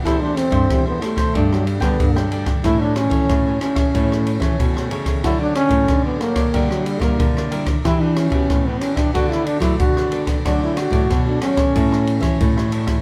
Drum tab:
RD |x-xxx-xxx-xxx-xx|x-xxx-xxx-xxx-xx|x-xxx-xxx-xxx-xx|x-xxx-xxx-xxx-xx|
SD |r-r-r-rr-r-r-r-r|r-r-r-rr-r-r-r-r|r-r-r-rr-r-r-r-r|r-r-r-rr-r-r-r-r|
BD |o--oo--oo--oo--o|o--oo--oo--oo--o|o--oo--oo--oo--o|o--oo--oo--oo--o|

RD |x-xxx-xxx-xxx-xx|
SD |r-r-r-rr-r-r-r-r|
BD |o--oo--oo--oo--o|